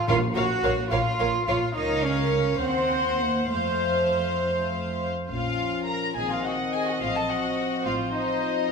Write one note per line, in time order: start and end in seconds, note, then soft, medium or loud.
0.08 0.16 A#1 medium
0.08 0.88 A#2 medium
0.08 0.16 F4 loud
0.08 0.16 A#4 medium
0.08 0.17 C#5 medium
0.08 0.17 F5 medium
0.35 0.44 A#1 medium
0.35 0.91 F#4 loud
0.35 0.43 A#4 medium
0.35 0.44 C#5 medium
0.35 0.44 F5 medium
0.63 0.72 A#1 medium
0.63 0.71 A#4 medium
0.63 0.72 C#5 medium
0.63 0.72 F5 medium
0.91 1.00 A#1 medium
0.91 1.47 F4 loud
0.91 0.99 A#4 medium
0.91 0.99 C#5 medium
0.91 1.00 F5 medium
1.19 1.28 A#1 medium
1.19 1.28 A#4 medium
1.19 1.28 C#5 medium
1.19 1.27 F5 medium
1.48 1.56 A#1 medium
1.48 1.76 F4 medium
1.48 1.56 A#4 medium
1.48 1.56 C#5 medium
1.48 1.57 F5 medium
1.76 2.58 C#2 medium
1.76 2.04 D#4 loud
1.76 2.59 A#4 medium
1.76 2.58 C#5 medium
1.76 2.59 F5 medium
2.04 2.62 C#4 medium
2.62 3.51 D#2 medium
2.62 3.20 C4 medium
2.62 3.50 C5 medium
2.62 3.52 F#5 medium
3.22 3.52 A#3 medium
3.51 5.06 F2 medium
3.51 4.98 A3 medium
3.51 5.07 C5 medium
3.51 5.07 F5 medium
5.30 6.03 A#1 medium
5.30 6.03 A#2 medium
5.30 6.12 F3 soft
5.30 6.12 C#4 soft
5.30 5.84 F4 soft
5.30 5.83 F5 medium
5.87 6.16 A#4 soft
5.87 6.16 A#5 medium
6.15 6.89 A#1 medium
6.15 6.89 A#2 soft
6.15 7.01 D#3 soft
6.15 8.72 C4 soft
6.15 6.30 G#4 medium
6.15 7.82 D#5 medium
6.15 6.30 G#5 medium
6.31 6.45 F4 soft
6.31 6.45 F5 medium
6.43 6.53 F#4 soft
6.43 6.73 F#5 medium
6.73 6.87 G#4 soft
6.73 6.87 G#5 medium
6.88 7.02 F#4 soft
6.88 7.02 F#5 soft
7.01 7.73 A1 soft
7.01 7.73 A2 medium
7.01 8.72 F3 soft
7.01 7.08 F4 soft
7.01 7.15 F5 medium
7.16 7.21 A4 soft
7.16 7.30 A5 medium
7.29 7.85 F#4 medium
7.29 7.86 F#5 medium
7.85 8.59 A1 medium
7.85 8.59 A2 medium
7.85 8.15 F4 medium
7.85 8.72 C5 medium
7.85 7.94 F5 medium
8.14 8.71 D#4 soft
8.14 8.71 D#5 medium